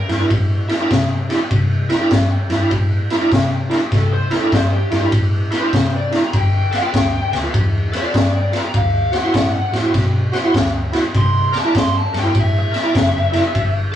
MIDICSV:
0, 0, Header, 1, 5, 480
1, 0, Start_track
1, 0, Tempo, 601805
1, 1202, Time_signature, 4, 2, 24, 8
1, 11131, End_track
2, 0, Start_track
2, 0, Title_t, "Lead electric guitar"
2, 0, Program_c, 0, 29
2, 0, Note_on_c, 0, 70, 92
2, 185, Note_off_c, 0, 70, 0
2, 3136, Note_on_c, 0, 69, 80
2, 3286, Note_off_c, 0, 69, 0
2, 3293, Note_on_c, 0, 72, 82
2, 3467, Note_off_c, 0, 72, 0
2, 3467, Note_on_c, 0, 69, 69
2, 3611, Note_off_c, 0, 69, 0
2, 3625, Note_on_c, 0, 72, 85
2, 3771, Note_off_c, 0, 72, 0
2, 3774, Note_on_c, 0, 67, 86
2, 4025, Note_off_c, 0, 67, 0
2, 4422, Note_on_c, 0, 72, 88
2, 4725, Note_off_c, 0, 72, 0
2, 4757, Note_on_c, 0, 74, 70
2, 4897, Note_off_c, 0, 74, 0
2, 4917, Note_on_c, 0, 82, 85
2, 5057, Note_off_c, 0, 82, 0
2, 5077, Note_on_c, 0, 79, 72
2, 5373, Note_off_c, 0, 79, 0
2, 5395, Note_on_c, 0, 79, 81
2, 5847, Note_off_c, 0, 79, 0
2, 6354, Note_on_c, 0, 74, 80
2, 6651, Note_off_c, 0, 74, 0
2, 6669, Note_on_c, 0, 74, 69
2, 6814, Note_off_c, 0, 74, 0
2, 6836, Note_on_c, 0, 82, 73
2, 6977, Note_off_c, 0, 82, 0
2, 6990, Note_on_c, 0, 77, 69
2, 7290, Note_off_c, 0, 77, 0
2, 7317, Note_on_c, 0, 78, 77
2, 7768, Note_off_c, 0, 78, 0
2, 8910, Note_on_c, 0, 84, 86
2, 9209, Note_off_c, 0, 84, 0
2, 9244, Note_on_c, 0, 81, 63
2, 9381, Note_off_c, 0, 81, 0
2, 9393, Note_on_c, 0, 84, 74
2, 9535, Note_off_c, 0, 84, 0
2, 9553, Note_on_c, 0, 81, 78
2, 9695, Note_off_c, 0, 81, 0
2, 9724, Note_on_c, 0, 79, 77
2, 9860, Note_off_c, 0, 79, 0
2, 9893, Note_on_c, 0, 76, 76
2, 10025, Note_off_c, 0, 76, 0
2, 10041, Note_on_c, 0, 76, 95
2, 10953, Note_off_c, 0, 76, 0
2, 11131, End_track
3, 0, Start_track
3, 0, Title_t, "Tonewheel organ"
3, 0, Program_c, 1, 16
3, 68, Note_on_c, 1, 64, 60
3, 74, Note_on_c, 1, 70, 70
3, 112, Note_off_c, 1, 64, 0
3, 115, Note_off_c, 1, 70, 0
3, 152, Note_on_c, 1, 62, 62
3, 159, Note_on_c, 1, 64, 55
3, 161, Note_on_c, 1, 70, 66
3, 239, Note_off_c, 1, 62, 0
3, 243, Note_off_c, 1, 64, 0
3, 244, Note_off_c, 1, 70, 0
3, 545, Note_on_c, 1, 64, 77
3, 557, Note_on_c, 1, 70, 89
3, 591, Note_off_c, 1, 64, 0
3, 597, Note_off_c, 1, 70, 0
3, 643, Note_on_c, 1, 62, 74
3, 645, Note_on_c, 1, 64, 65
3, 652, Note_on_c, 1, 70, 76
3, 725, Note_off_c, 1, 62, 0
3, 726, Note_off_c, 1, 64, 0
3, 730, Note_off_c, 1, 70, 0
3, 1028, Note_on_c, 1, 62, 80
3, 1034, Note_on_c, 1, 64, 73
3, 1037, Note_on_c, 1, 67, 83
3, 1115, Note_off_c, 1, 62, 0
3, 1118, Note_off_c, 1, 64, 0
3, 1119, Note_off_c, 1, 67, 0
3, 1508, Note_on_c, 1, 64, 87
3, 1515, Note_on_c, 1, 70, 97
3, 1553, Note_off_c, 1, 64, 0
3, 1556, Note_off_c, 1, 70, 0
3, 1602, Note_on_c, 1, 62, 81
3, 1605, Note_on_c, 1, 64, 66
3, 1608, Note_on_c, 1, 70, 79
3, 1685, Note_off_c, 1, 62, 0
3, 1686, Note_off_c, 1, 64, 0
3, 1688, Note_off_c, 1, 70, 0
3, 1989, Note_on_c, 1, 64, 77
3, 1999, Note_on_c, 1, 70, 84
3, 2034, Note_off_c, 1, 64, 0
3, 2038, Note_off_c, 1, 70, 0
3, 2076, Note_on_c, 1, 62, 77
3, 2083, Note_on_c, 1, 64, 66
3, 2087, Note_on_c, 1, 70, 83
3, 2162, Note_off_c, 1, 62, 0
3, 2166, Note_off_c, 1, 64, 0
3, 2167, Note_off_c, 1, 70, 0
3, 2478, Note_on_c, 1, 64, 78
3, 2488, Note_on_c, 1, 70, 84
3, 2518, Note_off_c, 1, 64, 0
3, 2523, Note_off_c, 1, 70, 0
3, 2554, Note_on_c, 1, 62, 73
3, 2560, Note_on_c, 1, 64, 71
3, 2565, Note_on_c, 1, 70, 80
3, 2641, Note_off_c, 1, 62, 0
3, 2644, Note_off_c, 1, 64, 0
3, 2647, Note_off_c, 1, 70, 0
3, 2946, Note_on_c, 1, 62, 74
3, 2948, Note_on_c, 1, 64, 69
3, 2957, Note_on_c, 1, 70, 90
3, 3035, Note_off_c, 1, 62, 0
3, 3036, Note_off_c, 1, 64, 0
3, 3040, Note_off_c, 1, 70, 0
3, 3431, Note_on_c, 1, 64, 75
3, 3442, Note_on_c, 1, 70, 78
3, 3475, Note_off_c, 1, 64, 0
3, 3481, Note_off_c, 1, 70, 0
3, 3514, Note_on_c, 1, 62, 66
3, 3520, Note_on_c, 1, 64, 62
3, 3530, Note_on_c, 1, 70, 70
3, 3602, Note_off_c, 1, 62, 0
3, 3605, Note_off_c, 1, 64, 0
3, 3610, Note_off_c, 1, 70, 0
3, 3913, Note_on_c, 1, 64, 65
3, 3926, Note_on_c, 1, 70, 76
3, 3956, Note_off_c, 1, 64, 0
3, 3963, Note_off_c, 1, 70, 0
3, 3996, Note_on_c, 1, 62, 64
3, 4003, Note_on_c, 1, 64, 55
3, 4011, Note_on_c, 1, 70, 70
3, 4083, Note_off_c, 1, 62, 0
3, 4087, Note_off_c, 1, 64, 0
3, 4091, Note_off_c, 1, 70, 0
3, 4392, Note_on_c, 1, 64, 66
3, 4406, Note_on_c, 1, 70, 65
3, 4436, Note_off_c, 1, 64, 0
3, 4444, Note_off_c, 1, 70, 0
3, 4476, Note_on_c, 1, 62, 57
3, 4480, Note_on_c, 1, 64, 54
3, 4484, Note_on_c, 1, 70, 64
3, 4563, Note_off_c, 1, 62, 0
3, 4566, Note_off_c, 1, 64, 0
3, 4567, Note_off_c, 1, 70, 0
3, 4872, Note_on_c, 1, 62, 68
3, 4881, Note_on_c, 1, 64, 63
3, 4884, Note_on_c, 1, 70, 79
3, 4959, Note_off_c, 1, 62, 0
3, 4964, Note_off_c, 1, 64, 0
3, 4965, Note_off_c, 1, 70, 0
3, 5353, Note_on_c, 1, 69, 69
3, 5365, Note_on_c, 1, 71, 77
3, 5397, Note_off_c, 1, 69, 0
3, 5403, Note_off_c, 1, 71, 0
3, 5435, Note_on_c, 1, 65, 65
3, 5442, Note_on_c, 1, 69, 59
3, 5445, Note_on_c, 1, 71, 67
3, 5523, Note_off_c, 1, 65, 0
3, 5527, Note_off_c, 1, 69, 0
3, 5528, Note_off_c, 1, 71, 0
3, 5832, Note_on_c, 1, 69, 61
3, 5843, Note_on_c, 1, 71, 63
3, 5877, Note_off_c, 1, 69, 0
3, 5883, Note_off_c, 1, 71, 0
3, 5926, Note_on_c, 1, 65, 64
3, 5930, Note_on_c, 1, 69, 60
3, 5933, Note_on_c, 1, 71, 67
3, 6009, Note_off_c, 1, 65, 0
3, 6011, Note_off_c, 1, 69, 0
3, 6012, Note_off_c, 1, 71, 0
3, 6315, Note_on_c, 1, 69, 62
3, 6326, Note_on_c, 1, 71, 67
3, 6358, Note_off_c, 1, 69, 0
3, 6364, Note_off_c, 1, 71, 0
3, 6399, Note_on_c, 1, 65, 54
3, 6408, Note_on_c, 1, 69, 49
3, 6413, Note_on_c, 1, 71, 64
3, 6486, Note_off_c, 1, 65, 0
3, 6490, Note_off_c, 1, 69, 0
3, 6493, Note_off_c, 1, 71, 0
3, 6795, Note_on_c, 1, 65, 66
3, 6802, Note_on_c, 1, 69, 56
3, 6807, Note_on_c, 1, 71, 74
3, 6882, Note_off_c, 1, 65, 0
3, 6884, Note_off_c, 1, 69, 0
3, 6887, Note_off_c, 1, 71, 0
3, 7271, Note_on_c, 1, 66, 64
3, 7279, Note_on_c, 1, 72, 78
3, 7317, Note_off_c, 1, 66, 0
3, 7320, Note_off_c, 1, 72, 0
3, 7367, Note_on_c, 1, 64, 65
3, 7370, Note_on_c, 1, 66, 54
3, 7374, Note_on_c, 1, 72, 65
3, 7450, Note_off_c, 1, 64, 0
3, 7451, Note_off_c, 1, 66, 0
3, 7453, Note_off_c, 1, 72, 0
3, 7755, Note_on_c, 1, 66, 62
3, 7761, Note_on_c, 1, 72, 74
3, 7799, Note_off_c, 1, 66, 0
3, 7802, Note_off_c, 1, 72, 0
3, 7829, Note_on_c, 1, 64, 55
3, 7838, Note_on_c, 1, 66, 61
3, 7841, Note_on_c, 1, 72, 64
3, 7921, Note_off_c, 1, 64, 0
3, 7925, Note_off_c, 1, 66, 0
3, 7927, Note_off_c, 1, 72, 0
3, 8231, Note_on_c, 1, 66, 83
3, 8242, Note_on_c, 1, 72, 84
3, 8277, Note_off_c, 1, 66, 0
3, 8282, Note_off_c, 1, 72, 0
3, 8324, Note_on_c, 1, 64, 70
3, 8330, Note_on_c, 1, 66, 65
3, 8334, Note_on_c, 1, 72, 71
3, 8408, Note_off_c, 1, 64, 0
3, 8411, Note_off_c, 1, 66, 0
3, 8413, Note_off_c, 1, 72, 0
3, 8713, Note_on_c, 1, 64, 86
3, 8720, Note_on_c, 1, 66, 72
3, 8726, Note_on_c, 1, 72, 87
3, 8800, Note_off_c, 1, 64, 0
3, 8803, Note_off_c, 1, 66, 0
3, 8806, Note_off_c, 1, 72, 0
3, 9188, Note_on_c, 1, 70, 69
3, 9199, Note_on_c, 1, 74, 79
3, 9235, Note_off_c, 1, 70, 0
3, 9240, Note_off_c, 1, 74, 0
3, 9284, Note_on_c, 1, 64, 61
3, 9288, Note_on_c, 1, 70, 59
3, 9295, Note_on_c, 1, 74, 73
3, 9367, Note_off_c, 1, 64, 0
3, 9369, Note_off_c, 1, 70, 0
3, 9373, Note_off_c, 1, 74, 0
3, 9674, Note_on_c, 1, 70, 62
3, 9685, Note_on_c, 1, 74, 62
3, 9717, Note_off_c, 1, 70, 0
3, 9723, Note_off_c, 1, 74, 0
3, 9752, Note_on_c, 1, 64, 60
3, 9756, Note_on_c, 1, 70, 57
3, 9763, Note_on_c, 1, 72, 67
3, 9841, Note_off_c, 1, 64, 0
3, 9843, Note_off_c, 1, 70, 0
3, 9847, Note_off_c, 1, 72, 0
3, 10141, Note_on_c, 1, 70, 62
3, 10154, Note_on_c, 1, 76, 77
3, 10191, Note_off_c, 1, 70, 0
3, 10197, Note_off_c, 1, 76, 0
3, 10232, Note_on_c, 1, 64, 60
3, 10233, Note_on_c, 1, 70, 53
3, 10243, Note_on_c, 1, 74, 66
3, 10321, Note_off_c, 1, 64, 0
3, 10322, Note_off_c, 1, 70, 0
3, 10326, Note_off_c, 1, 74, 0
3, 10625, Note_on_c, 1, 64, 65
3, 10633, Note_on_c, 1, 70, 64
3, 10636, Note_on_c, 1, 74, 74
3, 10714, Note_off_c, 1, 64, 0
3, 10718, Note_off_c, 1, 70, 0
3, 10720, Note_off_c, 1, 74, 0
3, 11101, Note_on_c, 1, 69, 94
3, 11131, Note_off_c, 1, 69, 0
3, 11131, End_track
4, 0, Start_track
4, 0, Title_t, "Fingered electric bass"
4, 0, Program_c, 2, 33
4, 65, Note_on_c, 2, 43, 71
4, 174, Note_off_c, 2, 43, 0
4, 241, Note_on_c, 2, 45, 70
4, 544, Note_off_c, 2, 45, 0
4, 723, Note_on_c, 2, 48, 76
4, 1026, Note_off_c, 2, 48, 0
4, 1203, Note_on_c, 2, 36, 76
4, 1506, Note_off_c, 2, 36, 0
4, 1681, Note_on_c, 2, 43, 83
4, 1877, Note_off_c, 2, 43, 0
4, 1984, Note_on_c, 2, 43, 66
4, 2094, Note_off_c, 2, 43, 0
4, 2161, Note_on_c, 2, 45, 78
4, 2465, Note_off_c, 2, 45, 0
4, 2648, Note_on_c, 2, 48, 85
4, 2950, Note_off_c, 2, 48, 0
4, 3127, Note_on_c, 2, 36, 81
4, 3429, Note_off_c, 2, 36, 0
4, 3607, Note_on_c, 2, 43, 85
4, 3802, Note_off_c, 2, 43, 0
4, 3920, Note_on_c, 2, 43, 72
4, 4026, Note_off_c, 2, 43, 0
4, 4086, Note_on_c, 2, 45, 77
4, 4389, Note_off_c, 2, 45, 0
4, 4571, Note_on_c, 2, 48, 75
4, 4872, Note_off_c, 2, 48, 0
4, 5053, Note_on_c, 2, 31, 87
4, 5354, Note_off_c, 2, 31, 0
4, 5533, Note_on_c, 2, 38, 84
4, 5726, Note_off_c, 2, 38, 0
4, 5840, Note_on_c, 2, 38, 71
4, 5947, Note_off_c, 2, 38, 0
4, 6014, Note_on_c, 2, 40, 85
4, 6315, Note_off_c, 2, 40, 0
4, 6492, Note_on_c, 2, 43, 75
4, 6793, Note_off_c, 2, 43, 0
4, 6971, Note_on_c, 2, 38, 79
4, 7273, Note_off_c, 2, 38, 0
4, 7448, Note_on_c, 2, 45, 82
4, 7643, Note_off_c, 2, 45, 0
4, 7756, Note_on_c, 2, 45, 69
4, 7864, Note_off_c, 2, 45, 0
4, 7929, Note_on_c, 2, 47, 80
4, 8231, Note_off_c, 2, 47, 0
4, 8408, Note_on_c, 2, 38, 85
4, 8711, Note_off_c, 2, 38, 0
4, 8891, Note_on_c, 2, 36, 88
4, 9192, Note_off_c, 2, 36, 0
4, 9372, Note_on_c, 2, 43, 81
4, 9565, Note_off_c, 2, 43, 0
4, 9680, Note_on_c, 2, 43, 76
4, 9786, Note_off_c, 2, 43, 0
4, 9848, Note_on_c, 2, 45, 88
4, 10150, Note_off_c, 2, 45, 0
4, 10329, Note_on_c, 2, 30, 84
4, 10630, Note_off_c, 2, 30, 0
4, 10810, Note_on_c, 2, 31, 80
4, 11110, Note_off_c, 2, 31, 0
4, 11131, End_track
5, 0, Start_track
5, 0, Title_t, "Drums"
5, 74, Note_on_c, 9, 51, 60
5, 85, Note_on_c, 9, 38, 34
5, 154, Note_off_c, 9, 51, 0
5, 164, Note_off_c, 9, 38, 0
5, 243, Note_on_c, 9, 36, 76
5, 244, Note_on_c, 9, 51, 77
5, 322, Note_off_c, 9, 36, 0
5, 324, Note_off_c, 9, 51, 0
5, 553, Note_on_c, 9, 51, 55
5, 564, Note_on_c, 9, 38, 32
5, 633, Note_off_c, 9, 51, 0
5, 643, Note_off_c, 9, 38, 0
5, 724, Note_on_c, 9, 36, 70
5, 724, Note_on_c, 9, 51, 78
5, 734, Note_on_c, 9, 38, 94
5, 804, Note_off_c, 9, 36, 0
5, 804, Note_off_c, 9, 51, 0
5, 814, Note_off_c, 9, 38, 0
5, 1036, Note_on_c, 9, 51, 60
5, 1046, Note_on_c, 9, 38, 32
5, 1116, Note_off_c, 9, 51, 0
5, 1126, Note_off_c, 9, 38, 0
5, 1202, Note_on_c, 9, 51, 77
5, 1203, Note_on_c, 9, 36, 78
5, 1282, Note_off_c, 9, 51, 0
5, 1283, Note_off_c, 9, 36, 0
5, 1513, Note_on_c, 9, 51, 62
5, 1523, Note_on_c, 9, 38, 32
5, 1592, Note_off_c, 9, 51, 0
5, 1603, Note_off_c, 9, 38, 0
5, 1681, Note_on_c, 9, 51, 76
5, 1683, Note_on_c, 9, 36, 80
5, 1691, Note_on_c, 9, 38, 99
5, 1761, Note_off_c, 9, 51, 0
5, 1763, Note_off_c, 9, 36, 0
5, 1771, Note_off_c, 9, 38, 0
5, 1992, Note_on_c, 9, 51, 63
5, 2003, Note_on_c, 9, 38, 30
5, 2072, Note_off_c, 9, 51, 0
5, 2083, Note_off_c, 9, 38, 0
5, 2163, Note_on_c, 9, 36, 78
5, 2163, Note_on_c, 9, 51, 70
5, 2243, Note_off_c, 9, 36, 0
5, 2243, Note_off_c, 9, 51, 0
5, 2474, Note_on_c, 9, 51, 52
5, 2485, Note_on_c, 9, 38, 32
5, 2554, Note_off_c, 9, 51, 0
5, 2564, Note_off_c, 9, 38, 0
5, 2645, Note_on_c, 9, 36, 72
5, 2648, Note_on_c, 9, 51, 66
5, 2659, Note_on_c, 9, 38, 85
5, 2725, Note_off_c, 9, 36, 0
5, 2728, Note_off_c, 9, 51, 0
5, 2739, Note_off_c, 9, 38, 0
5, 2958, Note_on_c, 9, 51, 56
5, 2968, Note_on_c, 9, 38, 33
5, 3038, Note_off_c, 9, 51, 0
5, 3048, Note_off_c, 9, 38, 0
5, 3125, Note_on_c, 9, 51, 69
5, 3126, Note_on_c, 9, 36, 74
5, 3135, Note_on_c, 9, 38, 29
5, 3205, Note_off_c, 9, 36, 0
5, 3205, Note_off_c, 9, 51, 0
5, 3215, Note_off_c, 9, 38, 0
5, 3437, Note_on_c, 9, 51, 54
5, 3447, Note_on_c, 9, 38, 34
5, 3517, Note_off_c, 9, 51, 0
5, 3527, Note_off_c, 9, 38, 0
5, 3607, Note_on_c, 9, 36, 76
5, 3609, Note_on_c, 9, 51, 73
5, 3619, Note_on_c, 9, 38, 90
5, 3687, Note_off_c, 9, 36, 0
5, 3689, Note_off_c, 9, 51, 0
5, 3699, Note_off_c, 9, 38, 0
5, 3920, Note_on_c, 9, 51, 57
5, 3931, Note_on_c, 9, 38, 35
5, 4000, Note_off_c, 9, 51, 0
5, 4010, Note_off_c, 9, 38, 0
5, 4084, Note_on_c, 9, 51, 81
5, 4087, Note_on_c, 9, 36, 82
5, 4164, Note_off_c, 9, 51, 0
5, 4167, Note_off_c, 9, 36, 0
5, 4400, Note_on_c, 9, 51, 57
5, 4410, Note_on_c, 9, 38, 30
5, 4480, Note_off_c, 9, 51, 0
5, 4490, Note_off_c, 9, 38, 0
5, 4571, Note_on_c, 9, 36, 74
5, 4572, Note_on_c, 9, 51, 70
5, 4582, Note_on_c, 9, 38, 91
5, 4650, Note_off_c, 9, 36, 0
5, 4652, Note_off_c, 9, 51, 0
5, 4662, Note_off_c, 9, 38, 0
5, 4885, Note_on_c, 9, 51, 61
5, 4895, Note_on_c, 9, 38, 34
5, 4964, Note_off_c, 9, 51, 0
5, 4975, Note_off_c, 9, 38, 0
5, 5052, Note_on_c, 9, 36, 78
5, 5052, Note_on_c, 9, 51, 75
5, 5132, Note_off_c, 9, 36, 0
5, 5132, Note_off_c, 9, 51, 0
5, 5364, Note_on_c, 9, 51, 58
5, 5374, Note_on_c, 9, 38, 31
5, 5443, Note_off_c, 9, 51, 0
5, 5454, Note_off_c, 9, 38, 0
5, 5533, Note_on_c, 9, 51, 75
5, 5534, Note_on_c, 9, 36, 75
5, 5544, Note_on_c, 9, 38, 94
5, 5613, Note_off_c, 9, 36, 0
5, 5613, Note_off_c, 9, 51, 0
5, 5624, Note_off_c, 9, 38, 0
5, 5847, Note_on_c, 9, 51, 62
5, 5857, Note_on_c, 9, 38, 30
5, 5927, Note_off_c, 9, 51, 0
5, 5937, Note_off_c, 9, 38, 0
5, 6014, Note_on_c, 9, 36, 83
5, 6014, Note_on_c, 9, 51, 84
5, 6094, Note_off_c, 9, 36, 0
5, 6094, Note_off_c, 9, 51, 0
5, 6328, Note_on_c, 9, 51, 60
5, 6338, Note_on_c, 9, 38, 31
5, 6407, Note_off_c, 9, 51, 0
5, 6418, Note_off_c, 9, 38, 0
5, 6494, Note_on_c, 9, 36, 71
5, 6495, Note_on_c, 9, 51, 68
5, 6505, Note_on_c, 9, 38, 100
5, 6573, Note_off_c, 9, 36, 0
5, 6574, Note_off_c, 9, 51, 0
5, 6585, Note_off_c, 9, 38, 0
5, 6805, Note_on_c, 9, 51, 58
5, 6815, Note_on_c, 9, 38, 31
5, 6885, Note_off_c, 9, 51, 0
5, 6895, Note_off_c, 9, 38, 0
5, 6970, Note_on_c, 9, 51, 71
5, 6972, Note_on_c, 9, 36, 74
5, 7050, Note_off_c, 9, 51, 0
5, 7052, Note_off_c, 9, 36, 0
5, 7281, Note_on_c, 9, 51, 51
5, 7291, Note_on_c, 9, 38, 32
5, 7361, Note_off_c, 9, 51, 0
5, 7371, Note_off_c, 9, 38, 0
5, 7450, Note_on_c, 9, 36, 77
5, 7451, Note_on_c, 9, 51, 64
5, 7462, Note_on_c, 9, 38, 97
5, 7530, Note_off_c, 9, 36, 0
5, 7531, Note_off_c, 9, 51, 0
5, 7541, Note_off_c, 9, 38, 0
5, 7764, Note_on_c, 9, 51, 51
5, 7774, Note_on_c, 9, 38, 31
5, 7843, Note_off_c, 9, 51, 0
5, 7854, Note_off_c, 9, 38, 0
5, 7930, Note_on_c, 9, 36, 85
5, 7933, Note_on_c, 9, 51, 75
5, 7943, Note_on_c, 9, 38, 31
5, 8010, Note_off_c, 9, 36, 0
5, 8012, Note_off_c, 9, 51, 0
5, 8023, Note_off_c, 9, 38, 0
5, 8241, Note_on_c, 9, 51, 50
5, 8252, Note_on_c, 9, 38, 32
5, 8321, Note_off_c, 9, 51, 0
5, 8331, Note_off_c, 9, 38, 0
5, 8410, Note_on_c, 9, 36, 68
5, 8411, Note_on_c, 9, 51, 67
5, 8421, Note_on_c, 9, 38, 92
5, 8489, Note_off_c, 9, 36, 0
5, 8490, Note_off_c, 9, 51, 0
5, 8501, Note_off_c, 9, 38, 0
5, 8720, Note_on_c, 9, 51, 60
5, 8730, Note_on_c, 9, 38, 33
5, 8800, Note_off_c, 9, 51, 0
5, 8810, Note_off_c, 9, 38, 0
5, 8890, Note_on_c, 9, 36, 83
5, 8892, Note_on_c, 9, 51, 77
5, 8970, Note_off_c, 9, 36, 0
5, 8972, Note_off_c, 9, 51, 0
5, 9204, Note_on_c, 9, 51, 59
5, 9214, Note_on_c, 9, 38, 30
5, 9283, Note_off_c, 9, 51, 0
5, 9294, Note_off_c, 9, 38, 0
5, 9371, Note_on_c, 9, 36, 81
5, 9374, Note_on_c, 9, 51, 78
5, 9384, Note_on_c, 9, 38, 104
5, 9451, Note_off_c, 9, 36, 0
5, 9454, Note_off_c, 9, 51, 0
5, 9464, Note_off_c, 9, 38, 0
5, 9684, Note_on_c, 9, 51, 59
5, 9695, Note_on_c, 9, 38, 35
5, 9764, Note_off_c, 9, 51, 0
5, 9775, Note_off_c, 9, 38, 0
5, 9849, Note_on_c, 9, 36, 79
5, 9851, Note_on_c, 9, 51, 80
5, 9929, Note_off_c, 9, 36, 0
5, 9931, Note_off_c, 9, 51, 0
5, 10162, Note_on_c, 9, 51, 55
5, 10172, Note_on_c, 9, 38, 32
5, 10241, Note_off_c, 9, 51, 0
5, 10252, Note_off_c, 9, 38, 0
5, 10329, Note_on_c, 9, 36, 68
5, 10331, Note_on_c, 9, 51, 82
5, 10341, Note_on_c, 9, 38, 95
5, 10409, Note_off_c, 9, 36, 0
5, 10410, Note_off_c, 9, 51, 0
5, 10421, Note_off_c, 9, 38, 0
5, 10635, Note_on_c, 9, 51, 61
5, 10645, Note_on_c, 9, 38, 33
5, 10715, Note_off_c, 9, 51, 0
5, 10725, Note_off_c, 9, 38, 0
5, 10807, Note_on_c, 9, 51, 75
5, 10808, Note_on_c, 9, 36, 74
5, 10886, Note_off_c, 9, 51, 0
5, 10887, Note_off_c, 9, 36, 0
5, 11131, End_track
0, 0, End_of_file